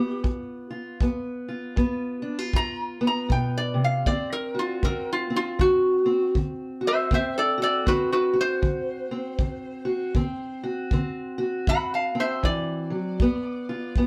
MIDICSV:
0, 0, Header, 1, 4, 480
1, 0, Start_track
1, 0, Tempo, 762389
1, 638, Time_signature, 4, 2, 24, 8
1, 8857, End_track
2, 0, Start_track
2, 0, Title_t, "Resonator guitar played with a steel bar"
2, 0, Program_c, 0, 25
2, 0, Note_on_c, 0, 67, 103
2, 138, Note_off_c, 0, 67, 0
2, 1614, Note_on_c, 0, 82, 114
2, 1763, Note_off_c, 0, 82, 0
2, 1934, Note_on_c, 0, 82, 84
2, 2083, Note_off_c, 0, 82, 0
2, 2089, Note_on_c, 0, 79, 86
2, 2241, Note_off_c, 0, 79, 0
2, 2251, Note_on_c, 0, 74, 88
2, 2402, Note_off_c, 0, 74, 0
2, 2420, Note_on_c, 0, 77, 81
2, 2561, Note_on_c, 0, 74, 88
2, 2567, Note_off_c, 0, 77, 0
2, 2717, Note_off_c, 0, 74, 0
2, 2723, Note_on_c, 0, 70, 85
2, 2878, Note_off_c, 0, 70, 0
2, 2890, Note_on_c, 0, 65, 81
2, 3042, Note_off_c, 0, 65, 0
2, 3052, Note_on_c, 0, 70, 87
2, 3203, Note_off_c, 0, 70, 0
2, 3227, Note_on_c, 0, 65, 88
2, 3371, Note_off_c, 0, 65, 0
2, 3377, Note_on_c, 0, 65, 100
2, 3525, Note_off_c, 0, 65, 0
2, 3532, Note_on_c, 0, 66, 94
2, 3993, Note_off_c, 0, 66, 0
2, 4327, Note_on_c, 0, 76, 86
2, 4330, Note_on_c, 0, 72, 81
2, 4480, Note_off_c, 0, 76, 0
2, 4486, Note_off_c, 0, 72, 0
2, 4496, Note_on_c, 0, 72, 87
2, 4501, Note_on_c, 0, 76, 86
2, 4638, Note_off_c, 0, 72, 0
2, 4644, Note_on_c, 0, 69, 84
2, 4647, Note_off_c, 0, 76, 0
2, 4651, Note_on_c, 0, 74, 91
2, 4790, Note_off_c, 0, 69, 0
2, 4798, Note_on_c, 0, 69, 79
2, 4799, Note_off_c, 0, 74, 0
2, 4807, Note_on_c, 0, 74, 93
2, 4949, Note_off_c, 0, 69, 0
2, 4960, Note_off_c, 0, 74, 0
2, 4960, Note_on_c, 0, 66, 85
2, 4962, Note_on_c, 0, 71, 93
2, 5108, Note_off_c, 0, 66, 0
2, 5112, Note_off_c, 0, 71, 0
2, 5115, Note_on_c, 0, 66, 77
2, 5120, Note_on_c, 0, 71, 80
2, 5267, Note_off_c, 0, 66, 0
2, 5276, Note_off_c, 0, 71, 0
2, 5293, Note_on_c, 0, 72, 107
2, 6700, Note_off_c, 0, 72, 0
2, 7359, Note_on_c, 0, 78, 90
2, 7364, Note_on_c, 0, 83, 99
2, 7514, Note_off_c, 0, 83, 0
2, 7517, Note_on_c, 0, 81, 78
2, 7518, Note_off_c, 0, 78, 0
2, 7522, Note_on_c, 0, 77, 65
2, 7668, Note_off_c, 0, 77, 0
2, 7672, Note_off_c, 0, 81, 0
2, 7681, Note_on_c, 0, 72, 83
2, 7683, Note_on_c, 0, 76, 87
2, 7827, Note_off_c, 0, 72, 0
2, 7834, Note_off_c, 0, 76, 0
2, 7838, Note_on_c, 0, 74, 94
2, 8857, Note_off_c, 0, 74, 0
2, 8857, End_track
3, 0, Start_track
3, 0, Title_t, "Steel-string acoustic guitar"
3, 0, Program_c, 1, 25
3, 0, Note_on_c, 1, 43, 73
3, 0, Note_on_c, 1, 59, 58
3, 0, Note_on_c, 1, 65, 58
3, 119, Note_off_c, 1, 43, 0
3, 149, Note_on_c, 1, 43, 82
3, 436, Note_off_c, 1, 65, 0
3, 444, Note_on_c, 1, 65, 52
3, 596, Note_off_c, 1, 43, 0
3, 614, Note_off_c, 1, 65, 0
3, 618, Note_off_c, 1, 59, 0
3, 638, Note_on_c, 1, 43, 81
3, 645, Note_on_c, 1, 59, 61
3, 935, Note_on_c, 1, 65, 53
3, 1081, Note_off_c, 1, 43, 0
3, 1109, Note_on_c, 1, 43, 68
3, 1112, Note_off_c, 1, 59, 0
3, 1120, Note_on_c, 1, 59, 64
3, 1396, Note_off_c, 1, 65, 0
3, 1398, Note_on_c, 1, 62, 56
3, 1502, Note_off_c, 1, 62, 0
3, 1502, Note_on_c, 1, 65, 47
3, 1557, Note_off_c, 1, 43, 0
3, 1595, Note_on_c, 1, 43, 71
3, 1887, Note_off_c, 1, 59, 0
3, 1894, Note_on_c, 1, 59, 59
3, 2040, Note_off_c, 1, 43, 0
3, 2068, Note_on_c, 1, 47, 58
3, 2355, Note_on_c, 1, 48, 61
3, 2364, Note_off_c, 1, 47, 0
3, 2541, Note_off_c, 1, 59, 0
3, 2555, Note_off_c, 1, 48, 0
3, 2561, Note_off_c, 1, 65, 0
3, 2562, Note_on_c, 1, 50, 67
3, 2563, Note_on_c, 1, 60, 65
3, 2862, Note_on_c, 1, 66, 52
3, 3005, Note_off_c, 1, 50, 0
3, 3041, Note_off_c, 1, 60, 0
3, 3044, Note_on_c, 1, 60, 61
3, 3045, Note_on_c, 1, 50, 67
3, 3335, Note_off_c, 1, 60, 0
3, 3338, Note_on_c, 1, 60, 56
3, 3486, Note_off_c, 1, 50, 0
3, 3518, Note_on_c, 1, 50, 75
3, 3811, Note_off_c, 1, 60, 0
3, 3813, Note_on_c, 1, 60, 58
3, 3962, Note_off_c, 1, 50, 0
3, 3999, Note_on_c, 1, 50, 76
3, 4285, Note_off_c, 1, 66, 0
3, 4287, Note_on_c, 1, 66, 55
3, 4442, Note_off_c, 1, 50, 0
3, 4478, Note_on_c, 1, 50, 74
3, 4481, Note_off_c, 1, 60, 0
3, 4483, Note_on_c, 1, 60, 68
3, 4502, Note_off_c, 1, 66, 0
3, 4771, Note_on_c, 1, 66, 61
3, 4922, Note_off_c, 1, 50, 0
3, 4949, Note_off_c, 1, 60, 0
3, 4949, Note_on_c, 1, 50, 67
3, 4952, Note_on_c, 1, 60, 57
3, 5245, Note_off_c, 1, 66, 0
3, 5247, Note_on_c, 1, 66, 57
3, 5397, Note_off_c, 1, 50, 0
3, 5427, Note_on_c, 1, 50, 77
3, 5724, Note_off_c, 1, 60, 0
3, 5737, Note_on_c, 1, 60, 55
3, 5876, Note_off_c, 1, 50, 0
3, 5919, Note_on_c, 1, 50, 67
3, 6194, Note_off_c, 1, 66, 0
3, 6201, Note_on_c, 1, 66, 61
3, 6361, Note_off_c, 1, 50, 0
3, 6373, Note_off_c, 1, 66, 0
3, 6381, Note_off_c, 1, 60, 0
3, 6393, Note_on_c, 1, 50, 78
3, 6397, Note_on_c, 1, 60, 62
3, 6696, Note_on_c, 1, 66, 60
3, 6837, Note_off_c, 1, 50, 0
3, 6876, Note_off_c, 1, 60, 0
3, 6879, Note_on_c, 1, 50, 71
3, 6883, Note_on_c, 1, 60, 62
3, 7158, Note_off_c, 1, 66, 0
3, 7165, Note_on_c, 1, 66, 64
3, 7320, Note_off_c, 1, 50, 0
3, 7349, Note_on_c, 1, 50, 75
3, 7641, Note_off_c, 1, 60, 0
3, 7649, Note_on_c, 1, 60, 59
3, 7794, Note_off_c, 1, 50, 0
3, 7825, Note_on_c, 1, 52, 63
3, 8118, Note_off_c, 1, 52, 0
3, 8124, Note_on_c, 1, 54, 63
3, 8291, Note_off_c, 1, 66, 0
3, 8294, Note_off_c, 1, 60, 0
3, 8313, Note_on_c, 1, 43, 73
3, 8315, Note_off_c, 1, 54, 0
3, 8323, Note_on_c, 1, 59, 69
3, 8620, Note_on_c, 1, 65, 64
3, 8754, Note_off_c, 1, 43, 0
3, 8794, Note_off_c, 1, 59, 0
3, 8799, Note_on_c, 1, 43, 71
3, 8802, Note_on_c, 1, 59, 59
3, 8857, Note_off_c, 1, 43, 0
3, 8857, Note_off_c, 1, 59, 0
3, 8857, Note_off_c, 1, 65, 0
3, 8857, End_track
4, 0, Start_track
4, 0, Title_t, "Drums"
4, 152, Note_on_c, 9, 36, 64
4, 215, Note_off_c, 9, 36, 0
4, 633, Note_on_c, 9, 36, 70
4, 696, Note_off_c, 9, 36, 0
4, 1116, Note_on_c, 9, 36, 64
4, 1179, Note_off_c, 9, 36, 0
4, 1596, Note_on_c, 9, 36, 68
4, 1659, Note_off_c, 9, 36, 0
4, 2077, Note_on_c, 9, 36, 68
4, 2140, Note_off_c, 9, 36, 0
4, 2558, Note_on_c, 9, 36, 70
4, 2621, Note_off_c, 9, 36, 0
4, 3041, Note_on_c, 9, 36, 65
4, 3103, Note_off_c, 9, 36, 0
4, 3522, Note_on_c, 9, 36, 72
4, 3585, Note_off_c, 9, 36, 0
4, 3999, Note_on_c, 9, 36, 59
4, 4062, Note_off_c, 9, 36, 0
4, 4477, Note_on_c, 9, 36, 69
4, 4540, Note_off_c, 9, 36, 0
4, 4954, Note_on_c, 9, 36, 68
4, 5017, Note_off_c, 9, 36, 0
4, 5432, Note_on_c, 9, 36, 69
4, 5495, Note_off_c, 9, 36, 0
4, 5910, Note_on_c, 9, 36, 66
4, 5973, Note_off_c, 9, 36, 0
4, 6389, Note_on_c, 9, 36, 65
4, 6452, Note_off_c, 9, 36, 0
4, 6869, Note_on_c, 9, 36, 67
4, 6932, Note_off_c, 9, 36, 0
4, 7350, Note_on_c, 9, 36, 73
4, 7412, Note_off_c, 9, 36, 0
4, 7830, Note_on_c, 9, 36, 65
4, 7893, Note_off_c, 9, 36, 0
4, 8310, Note_on_c, 9, 36, 78
4, 8373, Note_off_c, 9, 36, 0
4, 8786, Note_on_c, 9, 36, 65
4, 8849, Note_off_c, 9, 36, 0
4, 8857, End_track
0, 0, End_of_file